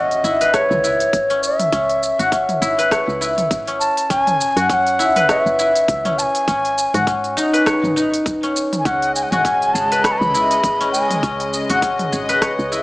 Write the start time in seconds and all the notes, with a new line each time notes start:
Already playing: G#1 C#4 E4 F#4 D#5, impact
0.11 open hi-hat, shaker
0.24 G#1 E4, shaker
0.41 B4, open hi-hat, shaker
0.54 C#5, kick, cross-stick, open hi-hat, shaker
0.71 C#2, mid tom, shaker
0.84 E4, shaker
1.00 open hi-hat, shaker
1.13 G#1, kick, open hi-hat, shaker
1.30 C#4, open hi-hat, shaker
1.43 E5, shaker
1.60 mid tom, open hi-hat, shaker
1.72 C#2 C#4, kick, open hi-hat, shaker
1.89 open hi-hat, shaker
2.03 shaker
2.19 G#1 F#4, open hi-hat, shaker
2.32 C#4, kick, open hi-hat, shaker
2.49 mid tom, open hi-hat, shaker
2.62 G#1 E4, shaker
2.79 B4, open hi-hat, shaker
2.91 C#5, kick, cross-stick, open hi-hat, shaker
3.08 C#2, shaker
3.21 E4, shaker
3.38 mid tom, open hi-hat, shaker
3.51 G#1, kick, open hi-hat, shaker
3.67 C#4, open hi-hat, shaker
3.80 A5, shaker
3.97 open hi-hat, shaker
4.10 F#1 C#4 G#5, kick, open hi-hat, shaker
4.27 mid tom, open hi-hat, shaker
4.41 shaker
4.56 F#2 F#4, open hi-hat, shaker
4.70 C#4 G#5, kick, open hi-hat, shaker
4.74 F#5
4.87 open hi-hat, shaker
4.99 C#2 E4, shaker
5.16 B4, mid tom, open hi-hat, shaker
5.29 C#5 E5, kick, cross-stick, open hi-hat, shaker
5.46 F#1, shaker
5.59 E4, shaker
5.75 open hi-hat, shaker
5.88 C#2, kick, open hi-hat, shaker
6.05 C#4, mid tom, open hi-hat, shaker
6.18 A5, shaker
6.22 G#5
6.35 open hi-hat, shaker
6.47 G#1 C#4, kick, open hi-hat, shaker
6.65 open hi-hat, shaker
6.78 shaker
6.94 G#2 F#4, mid tom, open hi-hat, shaker
7.07 C#4, kick, open hi-hat, shaker
7.24 open hi-hat, shaker
7.37 D#1 D#4, shaker
7.53 B4, open hi-hat, shaker
7.66 C#5, kick, cross-stick, open hi-hat, shaker
7.83 G#1, mid tom, shaker
7.96 D#4, shaker
8.14 open hi-hat, shaker
8.26 D#1, kick, open hi-hat, shaker
8.43 C#4, open hi-hat, shaker
8.56 shaker
8.73 mid tom, open hi-hat, shaker
8.79 G#5
8.85 C#2 C#3 G#3 C#4 D#5 F#5, kick, open hi-hat, shaker
9.02 open hi-hat, shaker
9.15 G#5, shaker
9.23 F#5
9.31 G#1 F#4 G#5, mid tom, open hi-hat, shaker
9.45 C#4, kick, open hi-hat, shaker
9.62 open hi-hat, shaker
9.74 G#1 G#4 A5, shaker
9.92 B4, open hi-hat, shaker
10.03 C#5 B5, kick, cross-stick, open hi-hat, shaker
10.12 A5
10.18 C#2 B5, mid tom, shaker
10.34 E4, shaker
10.51 open hi-hat, shaker
10.64 G#1, kick, open hi-hat, shaker
10.81 C#4, open hi-hat, shaker
10.92 G#5, shaker
11.11 mid tom, open hi-hat, shaker
11.23 C#2 C#4, kick, open hi-hat, shaker
11.40 open hi-hat, shaker
11.53 shaker
11.70 G#1 F#4, open hi-hat, shaker
11.82 C#4, kick, open hi-hat, shaker
11.99 mid tom, open hi-hat, shaker
12.12 G#1 G#4, shaker
12.29 B4, open hi-hat, shaker
12.42 C#5, kick, cross-stick, open hi-hat, shaker
12.59 C#2, shaker
12.72 E4, shaker